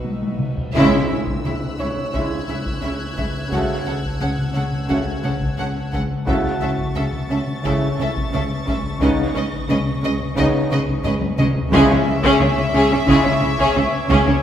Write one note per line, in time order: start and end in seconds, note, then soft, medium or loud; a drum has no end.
0.00 0.55 B1 soft
0.00 0.76 B1 medium
0.00 0.55 B2 soft
0.00 0.38 F#3 soft
0.00 0.38 D#4 soft
0.00 0.51 D#4 soft
0.00 0.51 F#4 soft
0.00 0.51 B4 soft
0.00 0.72 B4 soft
0.00 0.37 E6 soft
0.04 0.26 B2 soft
0.04 taiko high medium
0.22 taiko high medium
0.39 0.61 B2 soft
0.39 taiko mid medium
0.57 taiko low medium
0.74 1.08 C#2 medium
0.74 6.24 C#2 medium
0.74 1.07 C#3 loud
0.74 1.08 C#3 medium
0.74 0.96 C#3 medium
0.74 1.76 C#3 medium
0.74 1.07 G#3 medium
0.74 1.08 C#4 medium
0.74 1.07 E4 medium
0.74 1.08 E5 medium
0.74 5.89 E6 soft
0.74 taiko loud
0.74 tam-tam medium
1.10 1.18 C#2 medium
1.10 1.18 C#3 medium
1.10 1.31 C#3 soft
1.10 1.19 C#4 medium
1.10 1.18 E4 medium
1.10 1.19 E5 medium
1.27 taiko medium
1.44 1.53 C#2 medium
1.44 1.52 C#3 medium
1.44 1.66 C#3 medium
1.44 1.53 C#4 medium
1.44 1.53 E4 medium
1.44 1.53 E5 medium
1.44 5.90 F#6 medium
1.44 taiko mid medium
1.62 taiko mid soft
1.79 1.88 C#2 medium
1.79 1.87 C#3 medium
1.79 2.00 C#4 medium
1.79 1.88 C#4 soft
1.79 1.88 E4 medium
1.79 3.83 C#5 medium
1.79 1.87 E5 medium
1.97 taiko mid medium
2.13 2.22 C#2 medium
2.13 2.34 C#3 medium
2.13 2.22 C#3 medium
2.13 2.38 C#3 medium
2.13 2.39 G#3 medium
2.13 2.38 C#4 medium
2.13 2.22 C#4 medium
2.13 2.38 E4 medium
2.13 2.22 E4 medium
2.13 2.22 E5 medium
2.13 5.89 G#6 medium
2.13 taiko medium
2.48 2.57 C#2 medium
2.48 2.69 C#3 medium
2.48 2.58 C#3 medium
2.48 2.57 C#4 medium
2.48 2.56 E4 medium
2.48 2.56 E5 medium
2.48 taiko mid medium
2.66 taiko medium
2.82 2.91 C#2 medium
2.82 2.91 C#3 medium
2.82 2.90 C#4 medium
2.82 3.04 C#4 medium
2.82 2.91 E4 medium
2.82 2.90 E5 medium
3.17 3.25 C#2 medium
3.17 3.38 C#3 medium
3.17 3.26 C#3 medium
3.17 3.25 C#4 medium
3.17 3.25 E4 medium
3.17 3.25 E5 medium
3.17 taiko medium
3.50 3.60 C#2 medium
3.50 3.73 C#3 medium
3.50 3.60 C#3 medium
3.50 3.77 C#3 medium
3.50 3.77 A3 medium
3.50 3.75 C#4 medium
3.50 3.60 C#4 medium
3.50 3.75 F#4 medium
3.50 3.61 A4 medium
3.50 3.60 F#5 medium
3.50 taiko loud
3.86 3.95 C#2 medium
3.86 4.07 C#3 medium
3.86 3.95 C#3 medium
3.86 3.95 C#4 medium
3.86 3.95 A4 medium
3.86 3.94 F#5 medium
4.04 taiko medium
4.20 4.29 C#2 medium
4.20 4.41 C#3 medium
4.20 4.29 C#3 medium
4.20 4.28 C#4 medium
4.20 4.28 A4 medium
4.20 4.29 F#5 medium
4.20 taiko mid medium
4.38 taiko mid soft
4.54 4.63 C#2 medium
4.54 4.63 C#3 medium
4.54 4.75 C#4 medium
4.54 4.62 C#4 medium
4.54 4.63 A4 medium
4.54 4.62 F#5 medium
4.72 taiko mid medium
4.88 4.97 C#2 medium
4.88 5.13 C#3 medium
4.88 4.97 C#3 medium
4.88 5.10 C#3 medium
4.88 5.13 A3 medium
4.88 4.97 C#4 medium
4.88 5.13 C#4 medium
4.88 5.14 F#4 medium
4.88 4.97 A4 medium
4.88 4.97 F#5 medium
4.88 taiko medium
5.23 5.32 C#2 medium
5.23 5.32 C#3 medium
5.23 5.45 C#3 medium
5.23 5.32 C#4 medium
5.23 5.32 A4 medium
5.23 5.31 F#5 medium
5.23 taiko mid medium
5.42 taiko medium
5.58 5.67 C#2 medium
5.58 5.66 C#3 medium
5.58 5.67 C#4 medium
5.58 5.79 C#4 medium
5.58 5.67 A4 medium
5.58 5.66 F#5 medium
5.93 6.01 C#2 medium
5.93 6.13 C#3 medium
5.93 6.01 C#3 medium
5.93 6.01 C#4 medium
5.93 6.01 A4 medium
5.93 6.02 F#5 medium
5.93 taiko medium
6.27 6.36 C#2 medium
6.27 11.69 C#2 medium
6.27 6.48 C#3 medium
6.27 6.35 C#3 medium
6.27 6.51 C#3 medium
6.27 6.52 A3 medium
6.27 6.51 C#4 medium
6.27 6.36 C#4 medium
6.27 6.51 E4 medium
6.27 8.29 F#4 soft
6.27 6.37 A4 medium
6.27 6.36 E5 medium
6.27 8.29 F#5 medium
6.27 11.35 C#6 medium
6.27 9.58 A6 medium
6.27 taiko loud
6.61 6.70 C#2 medium
6.61 6.69 C#3 medium
6.61 6.82 C#3 medium
6.61 6.70 C#4 medium
6.61 6.70 A4 medium
6.61 6.69 E5 medium
6.79 taiko medium
6.95 7.04 C#2 medium
6.95 7.17 C#3 medium
6.95 7.04 C#3 medium
6.95 7.04 C#4 medium
6.95 7.03 A4 medium
6.95 7.03 E5 medium
6.95 taiko mid medium
7.14 taiko mid medium
7.30 7.38 C#2 medium
7.30 7.39 C#3 medium
7.30 7.38 C#4 medium
7.30 7.51 C#4 medium
7.30 7.38 A4 medium
7.30 7.39 E5 medium
7.48 taiko mid medium
7.64 7.73 C#2 medium
7.64 7.85 C#3 medium
7.64 7.89 C#3 medium
7.64 7.73 C#3 medium
7.64 7.89 A3 medium
7.64 7.88 C#4 medium
7.64 7.72 C#4 medium
7.64 7.88 E4 medium
7.64 7.72 A4 medium
7.64 7.73 E5 medium
7.64 taiko medium
7.99 8.07 C#2 medium
7.99 8.07 C#3 medium
7.99 8.20 C#3 medium
7.99 8.07 C#4 medium
7.99 8.07 A4 medium
7.99 8.09 E5 medium
7.99 taiko mid medium
8.17 taiko medium
8.33 8.42 C#2 medium
8.33 8.41 C#3 medium
8.33 8.41 C#4 medium
8.33 8.53 C#4 medium
8.33 8.42 A4 medium
8.33 8.41 E5 medium
8.67 8.76 C#2 medium
8.67 8.87 C#3 medium
8.67 8.75 C#3 medium
8.67 8.75 C#4 medium
8.67 8.76 A4 medium
8.67 8.76 E5 medium
8.67 taiko medium
9.00 9.09 C#2 medium
9.00 9.21 C#3 medium
9.00 9.09 C#3 medium
9.00 9.25 C#3 medium
9.00 9.25 B3 medium
9.00 9.24 C#4 medium
9.00 9.09 C#4 medium
9.00 9.24 D#4 medium
9.00 9.09 B4 medium
9.00 9.10 D#5 medium
9.00 taiko loud
9.34 9.43 C#2 medium
9.34 9.55 C#3 medium
9.34 9.43 C#3 medium
9.34 9.42 C#4 medium
9.34 9.43 B4 medium
9.34 9.44 D#5 medium
9.53 taiko medium
9.58 10.67 A#6 medium
9.69 9.77 C#2 medium
9.69 9.77 C#3 medium
9.69 9.90 C#3 medium
9.69 9.77 C#4 medium
9.69 9.77 B4 medium
9.69 9.78 D#5 medium
9.69 taiko mid medium
9.87 taiko mid medium
10.02 10.11 C#2 medium
10.02 10.11 C#3 medium
10.02 10.23 C#4 medium
10.02 10.11 C#4 medium
10.02 10.10 B4 medium
10.02 10.12 D#5 medium
10.21 taiko mid medium
10.36 10.45 C#2 medium
10.36 10.60 C#3 medium
10.36 10.58 C#3 loud
10.36 10.46 C#3 medium
10.36 10.60 B3 medium
10.36 10.45 C#4 medium
10.36 10.61 C#4 medium
10.36 10.61 D#4 loud
10.36 10.44 B4 medium
10.36 10.46 D#5 medium
10.36 taiko medium
10.70 10.79 C#2 medium
10.70 10.91 C#3 medium
10.70 10.80 C#3 medium
10.70 10.79 C#4 medium
10.70 10.78 B4 medium
10.70 10.80 D#5 medium
10.70 taiko mid medium
10.88 taiko medium
11.04 11.13 C#2 loud
11.04 11.13 C#3 medium
11.04 11.25 C#4 medium
11.04 11.13 C#4 medium
11.04 11.14 B4 medium
11.04 11.12 D#5 medium
11.04 taiko low-mid medium
11.21 taiko high medium
11.38 11.47 C#2 medium
11.38 11.59 C#3 medium
11.38 11.47 C#3 medium
11.38 11.47 C#4 medium
11.38 11.48 B4 medium
11.38 11.46 D#5 medium
11.38 taiko mid loud
11.55 taiko low loud
11.72 14.43 C#2 medium
11.72 11.79 C#2 loud
11.72 11.96 C#3 loud
11.72 12.69 C#3 loud
11.72 11.92 C#3 loud
11.72 11.80 C#3 loud
11.72 11.95 G#3 medium
11.72 11.88 C#4 loud
11.72 11.96 C#4 medium
11.72 11.96 E4 medium
11.72 11.88 G#4 loud
11.72 14.39 E5 medium
11.72 14.43 C#6 medium
11.72 14.43 D6 medium
11.72 taiko loud
11.89 11.96 C#3 medium
11.89 11.96 C#4 medium
11.89 11.97 C#4 medium
12.06 12.26 C#3 medium
12.23 12.30 C#3 loud
12.23 12.39 C#4 loud
12.23 12.40 G#4 loud
12.23 taiko medium
12.39 12.46 C#2 medium
12.39 12.60 C#3 medium
12.39 12.47 C#3 medium
12.39 12.47 C#4 medium
12.39 12.48 C#4 medium
12.39 taiko mid medium
12.57 12.64 C#3 medium
12.57 12.64 C#4 medium
12.57 12.64 E4 medium
12.57 taiko mid medium
12.73 12.80 C#2 loud
12.73 12.80 C#3 loud
12.73 12.93 C#4 medium
12.73 12.89 C#4 loud
12.73 12.90 G#4 loud
12.90 12.98 C#3 medium
12.90 12.97 C#4 medium
12.90 taiko mid medium
13.06 13.14 C#2 medium
13.06 13.31 C#3 medium
13.06 13.28 C#3 loud
13.06 13.14 C#3 loud
13.06 13.30 G#3 medium
13.06 13.23 C#4 medium
13.06 13.31 C#4 loud
13.06 13.32 E4 loud
13.06 13.24 G#4 loud
13.06 14.43 G#6 medium
13.06 taiko medium
13.24 13.32 C#3 medium
13.24 13.31 C#4 medium
13.41 13.48 C#2 medium
13.41 13.61 C#3 medium
13.41 13.49 C#3 medium
13.41 13.48 C#4 medium
13.41 13.49 E4 medium
13.41 taiko mid medium
13.58 13.65 C#3 loud
13.58 13.74 C#4 loud
13.58 13.74 G#4 loud
13.58 taiko medium
13.75 13.82 C#2 medium
13.75 13.82 C#3 medium
13.75 13.96 C#4 medium
13.75 13.82 C#4 medium
13.75 13.83 C#4 medium
14.09 14.16 C#2 loud
14.09 14.30 C#3 medium
14.09 14.16 C#3 loud
14.09 14.25 C#4 loud
14.09 14.25 G#4 loud
14.09 taiko medium
14.26 14.33 C#3 medium
14.26 14.33 C#4 medium
14.26 14.33 C#4 loud